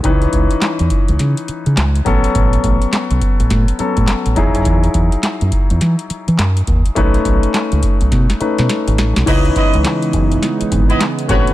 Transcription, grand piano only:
X:1
M:4/4
L:1/8
Q:"Swing 16ths" 1/4=104
K:C#m
V:1 name="Grand piano"
[D,E,CDB]6- [D,E,CDB] [F,B,CA]- | [F,B,CA]4- [F,B,CA] [F,B,CA]2 [F,DEG]- | [F,DEG]6- [F,DEG] z | [A,CDB]4- [A,CDB] [A,CDB]3 |
[E,CDB]6- [E,CDB] [A,^B,CF=B] |]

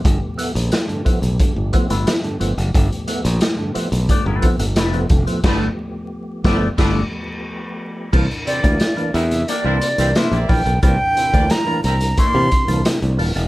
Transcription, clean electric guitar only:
X:1
M:4/4
L:1/16
Q:1/4=89
K:C
V:1 name="Clean electric guitar"
z8 z3 [A,DFB] z4 | z8 [A,DFd] [A,DFB] z2 [A,DFB] z3 | [A,DFB]2 z4 [A,DFd]2 [A,DFd]2 z6 | z8 [_B,DEd] [B,DEc] z2 [B,DEc] z3 |
z8 [_B,DEd] z6 z |]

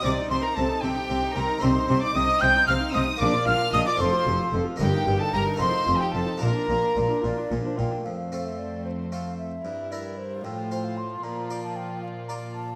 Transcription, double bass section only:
X:1
M:6/8
L:1/8
Q:3/8=75
K:Bb
V:1 name="Double bass section" clef=bass
C,, C,, C,, C,, C,, C,, | C,, C,, C,, C,, C,, C,, | B,,, B,,, B,,, F,,, F,,, F,,, | G,,, G,,, G,,, F,,, F,,, F,,, |
B,,, B,,, B,,, B,,, B,,, B,,, | [K:F] z6 | z6 | z6 |]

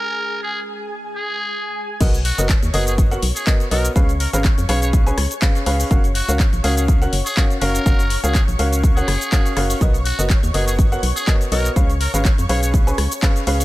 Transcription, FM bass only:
X:1
M:4/4
L:1/16
Q:"Swing 16ths" 1/4=123
K:F#
V:1 name="FM bass" clef=bass
z16 | B,,,3 F,,, z D,, F,,,4 B,,, z3 B,,, z | C,,3 G,,, z E,, B,,,4 C,, z3 C,, z | F,,,3 C,, z A,,, C,,4 F,,, z3 F,,, z |
F,,,3 C,, z A,,, C,,4 F,,, z3 F,,, z | B,,,3 F,,, z D,, F,,,4 B,,, z3 B,,, z | C,,3 G,,, z E,, B,,,4 C,, z3 C,, z |]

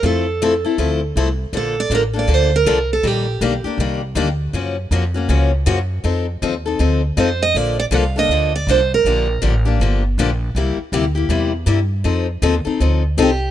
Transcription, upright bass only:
X:1
M:4/4
L:1/8
Q:"Swing" 1/4=160
K:F
V:1 name="Upright bass" clef=bass
F,,4 D,,2 C,,2 | [K:Bb] B,,,2 A,,,2 D,,2 C,,2 | B,,,2 _C,, z =C,,2 D,,2 | _G,,2 F,,2 _D,,2 G,,2 |
F,,2 E,,2 D,,2 F,,2 | B,,,2 C,,2 D,,2 C,,2 | B,,,2 A,,,2 G,,,2 B,,,2 | C,, z D,,2 =E,,2 G,,2 |
F,,2 E,, z D,,2 C,,2 |]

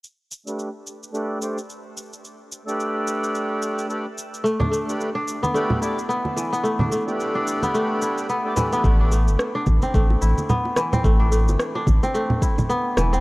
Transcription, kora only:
X:1
M:4/4
L:1/16
Q:"Swing 16ths" 1/4=109
K:Am
V:1 name="Kora"
z16 | z16 | A, D A, z2 D z B, A, z E2 B, z E, B, | A, D A, z2 D z B, A, z E2 B, z E, B, |
A, D A, z2 D z C A, z E2 B, z E, C | A, D A, z2 D z C A, z E2 B, z E, C |]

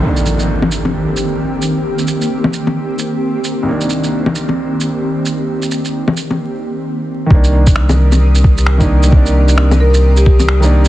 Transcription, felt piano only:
X:1
M:4/4
L:1/16
Q:"Swing 16ths" 1/4=132
K:Cm
V:1 name="Felt piano"
[C,,E,B,D]16- | [C,,E,B,D]16 | [C,,E,B,D]16- | [C,,E,B,D]16 |
[E,B,D]8- [E,B,D]2 z3 [E,B,D]2 z | [E,B,D]8- [E,B,D]2 z3 [E,B,D]2 z |]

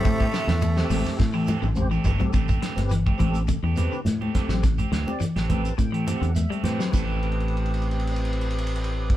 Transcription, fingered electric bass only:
X:1
M:4/4
L:1/16
Q:1/4=105
K:Am
V:1 name="Fingered electric bass" clef=bass
A,,2 z E,,3 A,,, z A,,3 A,,,3 G,,, z | A,,,2 z G,,,3 A,,,3 E,,2 z A,,2 z A,,,- | A,,,2 D,, z2 A,,,3 A,,3 E,,2 z A,, z | A,,,16 |]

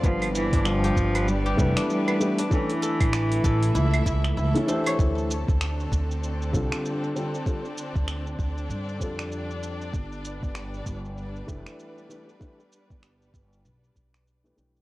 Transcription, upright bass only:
X:1
M:4/4
L:1/16
Q:"Swing 16ths" 1/4=97
K:Ddor
V:1 name="Upright bass" clef=bass
G,,,3 G,,,3 G,,,4 F,,, z4 z | z3 A,,,3 A,,,2 ^C,,2 C,,2 C,, z3 | D,,3 D,,3 D,,4 C,, z4 z | z3 D,,3 D,,2 G,,2 z6 |
G,,,3 G,,,3 G,,,4 F,,, z4 z | z3 G,,,3 G,,,2 B,,,2 B,,,4 B,,,2 |]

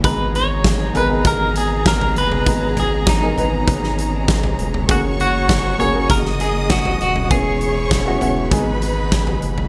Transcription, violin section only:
X:1
M:4/4
L:1/8
Q:1/4=99
K:G#m
V:1 name="Violin section"
[Ga]8- | [Ga]8 | [cc']4 [dd']4 | [cc']4 [Bb]4 |]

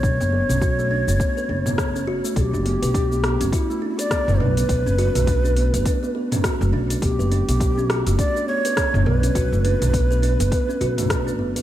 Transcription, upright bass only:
X:1
M:4/4
L:1/16
Q:"Swing 16ths" 1/4=103
K:Glyd
V:1 name="Upright bass" clef=bass
B,,, F,,,2 B,,,4 F,,, z2 F,,,4- F,,, z | B,,, F,,,2 B,,,4 F,,, z4 z F,,, B,,,2 | B,,, F,,,2 B,,,4 F,,, z4 z F,,, B,,,2 | B,,, F,,,2 B,,,4 F,,, z4 z F,,, B,,,2 |
B,,, F,,,2 B,,,4 F,,, z2 B,,,4 F,,, A,,, |]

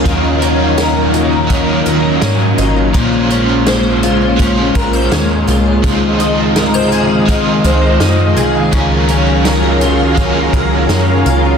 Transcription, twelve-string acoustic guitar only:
X:1
M:4/4
L:1/16
Q:1/4=83
K:Db
V:1 name="Twelve-string acoustic guitar"
E,2 D2 B2 E2 D2 B2 D2 E2 | B,,2 D2 c2 F2 D2 B c D2 F2 | z2 E2 B c A2 E2 c2 E2 A2 | D,2 D2 B2 F2 D2 B2 D2 F2 |]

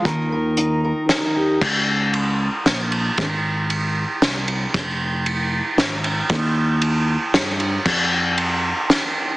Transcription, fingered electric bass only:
X:1
M:3/4
L:1/8
Q:1/4=115
K:Ebmix
V:1 name="Fingered electric bass" clef=bass
E,,4 z2 | D,,4 B,,,2 | A,,,4 C,,2 | F,,,4 A,,,2 |
E,,4 G,,2 | F,,4 z2 |]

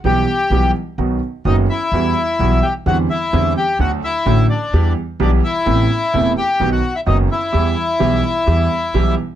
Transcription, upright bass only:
X:1
M:4/4
L:1/8
Q:1/4=128
K:Em
V:1 name="Upright bass" clef=bass
B,,, z B,,, z B,,, z F,,, z | E,, z B,,, z E,, z E,, z | D,, z A,,, z E,, z B,,, z | A,,, z E,,, z B,,, z F,,, z |
E,, z B,,, z E,, z B,,, z |]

